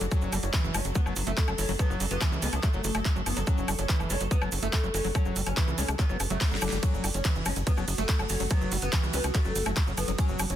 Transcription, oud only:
0.11 0.27 C#4 loud
0.43 0.59 C#4 medium
0.74 0.85 C#4 medium
0.95 1.11 B3 medium
1.27 1.43 A3 medium
1.58 1.69 C#4 medium
1.79 1.95 B3 loud
2.11 2.26 B3 loud
2.42 2.53 B3 medium
2.63 2.79 A3 loud
2.95 3.10 F#3 loud
3.26 3.37 B3 medium
3.47 3.63 C#4 loud
3.79 3.94 C#4 medium
4.10 4.21 C#4 medium
4.31 4.47 B3 loud
4.63 4.78 A3 medium
4.94 5.04 C#4 medium
5.15 5.31 C#4 loud
5.46 5.62 C#4 medium
5.78 5.88 C#4 medium
5.99 6.15 B3 loud
6.30 6.46 A3 loud
6.62 6.72 G3 medium
6.83 6.98 C#4 loud
7.14 7.30 C#4 medium
7.46 7.56 C#4 medium
7.67 7.82 B3 medium
7.98 8.14 A3 loud
8.30 8.40 C#4 medium
8.51 8.66 B3 loud
8.82 8.98 B3 loud
9.14 9.24 B3 medium
9.35 9.50 A3 medium
9.66 9.82 F#3 medium
9.97 10.08 B3 medium
10.18 10.34 C#4 loud
10.50 10.56 C#4 loud

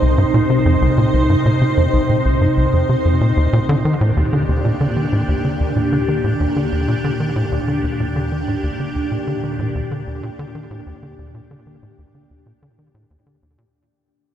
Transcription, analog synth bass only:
0.02 0.17 C2 medium
0.18 0.25 G2 loud
0.34 0.41 A#2 loud
0.50 0.61 C3 medium
0.66 0.77 F2 loud
0.82 0.89 C2 loud
0.98 1.09 A#2 medium
1.14 1.29 C2 medium
1.30 1.36 G2 loud
1.46 1.52 A#2 loud
1.62 1.73 C3 medium
1.77 1.89 F2 loud
1.93 2.00 C2 loud
2.10 2.21 A#2 medium
2.26 2.41 C2 medium
2.41 2.48 G2 loud
2.58 2.69 C2 medium
2.73 2.85 F2 medium
2.89 2.96 C3 medium
3.05 3.20 F2 medium
3.21 3.32 A#2 medium
3.37 3.48 D#2 medium
3.53 3.60 A#2 loud
3.69 3.76 D3 loud
3.85 3.96 D#3 medium
4.01 4.12 A2 loud
4.17 4.24 D#2 medium
4.33 4.44 D3 medium
4.49 4.64 D#2 medium
4.65 4.71 A#2 loud
4.81 4.87 D3 loud
4.97 5.08 D#3 medium
5.13 5.24 A2 loud
5.29 5.35 D#2 loud
5.45 5.56 D3 medium
5.61 5.76 D#2 medium
5.76 5.83 A#2 loud
5.93 5.99 D3 medium
6.08 6.20 D#3 medium
6.24 6.36 A2 loud
6.40 6.47 D#2 loud
6.56 6.68 D3 medium
6.72 6.87 D#2 medium
6.88 6.95 A#2 loud
7.04 7.11 D3 medium
7.20 7.31 D#3 medium
7.36 7.47 A2 loud
7.52 7.59 D#2 loud
7.68 7.79 D3 medium
7.84 7.99 D#2 medium
8.00 8.07 A#2 loud
8.16 8.23 D3 loud
8.32 8.43 D#3 medium
8.48 8.59 A2 loud
8.64 8.70 D#2 loud
8.80 8.91 D3 medium
8.96 9.11 D#2 medium
9.12 9.18 A#2 loud
9.27 9.34 D3 loud
9.43 9.55 D#3 medium
9.59 9.71 A2 loud
9.75 9.82 D#2 loud
9.91 10.03 D3 medium
10.07 10.22 D#2 medium
10.23 10.30 A#2 loud
10.39 10.46 D3 loud
10.55 10.66 D#3 medium
10.71 10.82 A2 loud
10.87 10.94 D#2 loud
11.03 11.14 D3 medium
11.19 11.34 D#2 medium
11.35 11.42 A#2 loud
11.51 11.58 D3 loud
11.67 11.78 D#3 medium
11.83 11.94 A2 loud
11.99 12.06 D#2 loud
12.15 12.26 D3 medium
12.31 12.46 D#2 medium
12.46 12.53 A#2 loud
12.63 12.69 D3 loud
12.79 12.90 D#3 medium
12.95 13.06 A2 loud
13.11 13.17 D#2 loud
13.27 13.38 D3 medium
13.43 13.58 D#2 medium
13.58 13.65 A#2 loud

